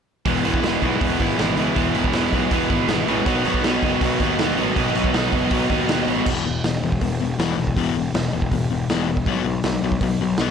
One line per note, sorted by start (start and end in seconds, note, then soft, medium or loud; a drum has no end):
0.26 0.39 E1 medium
0.26 0.45 E2 medium
0.26 0.44 B2 medium
0.26 0.43 E3 medium
0.26 0.46 E3 medium
0.26 0.44 G#3 medium
0.26 0.44 B3 loud
0.26 0.45 E4 medium
0.26 kick loud
0.26 open hi-hat medium
0.43 0.57 E1 medium
0.43 0.63 E2 medium
0.43 0.63 B2 medium
0.43 0.63 E3 medium
0.43 0.64 E3 medium
0.43 0.63 G#3 medium
0.43 0.64 B3 medium
0.43 0.64 E4 medium
0.43 open hi-hat medium
0.54 kick medium
0.62 0.76 E1 medium
0.62 0.82 E2 medium
0.62 0.82 B2 medium
0.62 0.81 E3 medium
0.62 0.84 E3 medium
0.62 0.81 G#3 medium
0.62 0.82 B3 medium
0.62 0.82 E4 medium
0.62 snare loud
0.62 open hi-hat medium
0.81 0.96 B1 medium
0.81 1.00 E2 medium
0.81 1.01 B2 medium
0.81 0.98 E3 medium
0.81 1.01 E3 medium
0.81 0.99 G#3 medium
0.81 1.00 B3 medium
0.81 1.00 E4 medium
0.81 kick medium
0.81 open hi-hat medium
0.99 1.14 E1 medium
0.99 1.18 E2 medium
0.99 1.19 B2 medium
0.99 1.17 E3 medium
0.99 1.19 E3 medium
0.99 1.17 G#3 medium
0.99 1.19 B3 loud
0.99 1.18 E4 loud
0.99 kick loud
0.99 open hi-hat medium
1.18 1.33 G#1 medium
1.18 1.37 E2 medium
1.18 1.38 B2 medium
1.18 1.36 E3 medium
1.18 1.38 E3 medium
1.18 1.37 G#3 medium
1.18 1.38 B3 medium
1.18 1.37 E4 medium
1.18 kick medium
1.18 open hi-hat medium
1.37 1.52 G#1 medium
1.37 1.56 E2 medium
1.37 1.57 B2 medium
1.37 1.55 E3 medium
1.37 1.58 E3 medium
1.37 1.55 G#3 medium
1.37 1.56 B3 medium
1.37 1.56 E4 medium
1.37 snare loud
1.37 open hi-hat medium
1.56 1.70 C#2 medium
1.56 1.76 E2 medium
1.56 1.76 B2 medium
1.56 1.74 E3 medium
1.56 1.77 E3 medium
1.56 1.75 G#3 medium
1.56 1.76 B3 medium
1.56 1.76 E4 medium
1.56 open hi-hat soft
1.75 1.90 E1 medium
1.75 1.95 E2 medium
1.75 1.95 B2 medium
1.75 1.92 E3 medium
1.75 1.96 E3 loud
1.75 1.93 G#3 loud
1.75 1.94 B3 medium
1.75 1.94 E4 medium
1.75 kick medium
1.75 open hi-hat medium
1.94 2.08 E1 medium
1.94 2.13 E2 medium
1.94 2.14 B2 medium
1.94 2.11 E3 medium
1.94 2.15 E3 medium
1.94 2.12 G#3 medium
1.94 2.13 B3 medium
1.94 2.12 E4 medium
1.94 open hi-hat medium
2.04 kick medium
2.12 2.26 E1 medium
2.12 2.32 E2 medium
2.12 2.33 B2 medium
2.12 2.31 E3 medium
2.12 2.34 E3 medium
2.12 2.32 G#3 medium
2.12 2.33 B3 medium
2.12 2.33 E4 medium
2.12 snare loud
2.12 open hi-hat medium
2.32 2.46 B1 medium
2.32 2.50 E2 medium
2.32 2.51 B2 medium
2.32 2.49 E3 medium
2.32 2.51 E3 medium
2.32 2.50 G#3 medium
2.32 2.51 B3 medium
2.32 2.51 E4 medium
2.32 kick medium
2.32 open hi-hat soft
2.51 2.65 E1 medium
2.51 2.69 E2 medium
2.51 2.69 B2 medium
2.51 2.69 E3 medium
2.51 2.70 E3 medium
2.51 2.69 G#3 medium
2.51 2.70 B3 medium
2.51 2.70 E4 medium
2.51 kick loud
2.51 open hi-hat medium
2.70 2.83 G#1 medium
2.70 2.88 E2 medium
2.70 2.89 B2 medium
2.70 2.87 E3 medium
2.70 2.89 E3 medium
2.70 2.88 G#3 medium
2.70 2.89 B3 medium
2.70 2.88 E4 medium
2.70 kick medium
2.70 open hi-hat soft
2.88 3.02 G#1 medium
2.88 3.06 E2 medium
2.88 3.08 B2 medium
2.88 3.05 E3 medium
2.88 3.07 E3 medium
2.88 3.06 G#3 medium
2.88 3.08 B3 medium
2.88 3.07 E4 medium
2.88 snare loud
2.88 open hi-hat medium
3.07 3.21 A1 medium
3.07 3.25 E2 medium
3.07 3.25 B2 medium
3.07 3.25 E3 medium
3.07 3.26 E3 medium
3.07 3.25 G#3 medium
3.07 3.27 B3 medium
3.07 3.26 E4 medium
3.07 open hi-hat soft
3.26 3.40 B1 medium
3.26 3.44 B2 medium
3.26 3.45 B2 medium
3.26 3.44 D#3 medium
3.26 3.46 F#3 medium
3.26 3.45 F#3 medium
3.26 3.47 B3 medium
3.26 3.46 B3 loud
3.26 3.46 D#4 loud
3.26 kick loud
3.26 open hi-hat medium
3.44 3.58 B1 medium
3.44 3.63 B2 medium
3.44 3.65 B2 medium
3.44 3.63 D#3 medium
3.44 3.64 F#3 medium
3.44 3.66 F#3 medium
3.44 3.64 B3 medium
3.44 3.67 B3 medium
3.44 3.65 D#4 medium
3.44 open hi-hat soft
3.54 kick medium
3.63 3.77 B1 medium
3.63 3.82 B2 medium
3.63 3.84 B2 medium
3.63 3.82 D#3 medium
3.63 3.83 F#3 medium
3.63 3.85 F#3 medium
3.63 3.83 B3 medium
3.63 3.85 B3 medium
3.63 3.84 D#4 medium
3.63 snare loud
3.63 open hi-hat medium
3.82 3.96 F#1 medium
3.82 4.00 B2 medium
3.82 4.01 B2 medium
3.82 4.00 D#3 medium
3.82 4.00 F#3 medium
3.82 4.02 F#3 medium
3.82 4.02 B3 medium
3.82 4.03 B3 medium
3.82 4.02 D#4 medium
3.82 kick medium
3.82 open hi-hat medium
4.01 4.15 B1 medium
4.01 4.20 B2 medium
4.01 4.20 D#3 medium
4.01 4.21 F#3 medium
4.01 4.21 F#3 loud
4.01 4.22 B3 medium
4.01 4.21 D#4 loud
4.01 kick loud
4.01 open hi-hat medium
4.20 4.34 D#2 medium
4.20 4.38 B2 medium
4.20 4.39 B2 medium
4.20 4.39 D#3 medium
4.20 4.39 F#3 medium
4.20 4.40 F#3 medium
4.20 4.40 B3 medium
4.20 4.41 B3 medium
4.20 4.40 D#4 medium
4.20 kick medium
4.20 open hi-hat medium
4.39 4.53 D#2 medium
4.39 4.56 B2 medium
4.39 4.57 B2 medium
4.39 4.57 D#3 medium
4.39 4.57 F#3 medium
4.39 4.58 B3 medium
4.39 4.59 B3 medium
4.39 4.57 D#4 medium
4.39 snare loud
4.39 open hi-hat medium
4.57 4.71 A1 medium
4.57 4.76 B2 medium
4.57 4.75 B2 medium
4.57 4.76 D#3 medium
4.57 4.77 F#3 medium
4.57 4.76 F#3 medium
4.57 4.77 B3 medium
4.57 4.78 B3 medium
4.57 4.78 D#4 medium
4.57 open hi-hat medium
4.76 4.90 B1 medium
4.76 4.94 B2 medium
4.76 4.94 D#3 medium
4.76 4.96 F#3 medium
4.76 4.95 F#3 medium
4.76 4.96 B3 loud
4.76 4.96 B3 medium
4.76 4.95 D#4 medium
4.76 kick loud
4.76 open hi-hat medium
4.95 5.09 B1 medium
4.95 5.13 B2 medium
4.95 5.14 D#3 medium
4.95 5.14 F#3 medium
4.95 5.14 B3 medium
4.95 5.15 B3 medium
4.95 5.15 D#4 medium
4.95 open hi-hat medium
5.04 kick medium
5.14 5.27 B1 medium
5.14 5.32 B2 medium
5.14 5.32 D#3 medium
5.14 5.33 F#3 medium
5.14 5.33 B3 medium
5.14 5.34 B3 medium
5.14 5.34 D#4 medium
5.14 snare loud
5.14 open hi-hat medium
5.32 5.46 F#1 medium
5.32 5.50 B2 medium
5.32 5.51 B2 medium
5.32 5.51 D#3 medium
5.32 5.52 F#3 medium
5.32 5.52 B3 medium
5.32 5.52 D#4 loud
5.32 kick medium
5.32 open hi-hat medium
5.51 5.65 B1 medium
5.51 5.68 B2 medium
5.51 5.71 B2 medium
5.51 5.69 D#3 medium
5.51 5.69 F#3 loud
5.51 5.72 F#3 medium
5.51 5.72 B3 loud
5.51 5.70 B3 medium
5.51 5.71 D#4 loud
5.51 kick loud
5.51 open hi-hat medium
5.69 5.84 D#2 medium
5.69 5.87 B2 medium
5.69 5.89 B2 medium
5.69 5.88 D#3 medium
5.69 5.88 F#3 medium
5.69 5.90 F#3 medium
5.69 5.89 B3 medium
5.69 5.91 B3 medium
5.69 5.90 D#4 medium
5.69 kick medium
5.69 open hi-hat soft
5.89 6.02 D#2 medium
5.89 6.06 B2 medium
5.89 6.07 B2 medium
5.89 6.07 D#3 medium
5.89 6.07 F#3 medium
5.89 6.08 F#3 medium
5.89 6.07 B3 medium
5.89 6.08 B3 medium
5.89 6.08 D#4 medium
5.89 snare loud
5.89 open hi-hat medium
6.07 6.21 A1 medium
6.07 6.25 B2 medium
6.07 6.26 B2 medium
6.07 6.26 D#3 medium
6.07 6.26 F#3 medium
6.07 6.26 B3 medium
6.07 6.26 D#4 medium
6.07 open hi-hat soft
6.26 6.39 E1 medium
6.26 6.45 E2 medium
6.26 6.45 B2 medium
6.26 6.46 E3 medium
6.26 kick loud
6.26 crash loud
6.45 6.58 E1 medium
6.45 6.63 E2 medium
6.45 6.63 B2 medium
6.64 6.77 E1 medium
6.64 6.81 E2 medium
6.64 6.82 B2 medium
6.64 snare loud
6.64 open hi-hat medium
6.83 6.96 E1 medium
6.83 7.00 E2 medium
6.83 7.00 B2 medium
6.92 kick medium
7.01 7.15 E1 medium
7.01 7.19 E2 medium
7.01 7.19 B2 medium
7.01 kick loud
7.01 open hi-hat medium
7.20 7.34 E1 medium
7.20 7.37 E2 medium
7.20 7.38 B2 medium
7.39 7.52 E1 medium
7.39 7.57 E2 medium
7.39 7.57 B2 medium
7.39 7.57 E3 medium
7.39 snare loud
7.39 open hi-hat medium
7.58 7.71 E1 medium
7.58 7.75 E2 medium
7.58 7.75 B2 medium
7.67 kick medium
7.76 7.89 E1 medium
7.76 7.95 E2 medium
7.76 7.95 B2 medium
7.76 7.95 E3 loud
7.76 kick medium
7.76 open hi-hat medium
7.95 8.08 E1 medium
7.95 8.13 E2 medium
7.95 8.13 B2 medium
8.14 8.27 E1 medium
8.14 8.31 E2 medium
8.14 8.31 B2 medium
8.14 snare loud
8.14 open hi-hat medium
8.33 8.46 E1 medium
8.33 8.50 E2 medium
8.33 8.50 B2 medium
8.42 kick medium
8.51 8.64 E1 medium
8.51 8.69 E2 medium
8.51 8.69 B2 medium
8.51 kick medium
8.51 open hi-hat medium
8.71 8.84 E1 medium
8.71 8.87 E2 medium
8.71 8.88 B2 medium
8.89 9.15 E1 medium
8.89 9.07 E2 medium
8.89 9.07 B2 medium
8.89 9.08 E3 medium
8.89 snare loud
8.89 open hi-hat soft
9.09 9.25 E2 medium
9.09 9.26 B2 medium
9.17 kick medium
9.26 9.39 B1 medium
9.26 9.44 B2 medium
9.26 9.45 F#3 medium
9.26 9.45 B3 medium
9.26 kick medium
9.26 open hi-hat soft
9.44 9.57 B1 medium
9.44 9.62 B2 medium
9.44 9.63 F#3 medium
9.63 9.77 B1 medium
9.63 9.81 B2 medium
9.63 9.81 F#3 medium
9.63 snare loud
9.63 open hi-hat medium
9.83 9.96 B1 medium
9.83 10.00 B2 medium
9.83 10.00 F#3 medium
9.92 kick medium
10.01 10.14 B1 medium
10.01 10.19 B2 medium
10.01 10.19 F#3 medium
10.01 kick loud
10.01 open hi-hat medium
10.21 10.34 B1 medium
10.21 10.37 B2 medium
10.21 10.38 F#3 medium
10.37 10.51 B1 medium
10.37 10.51 B2 medium
10.37 10.51 F#3 medium
10.37 snare loud
10.37 open hi-hat medium
10.41 10.51 B3 medium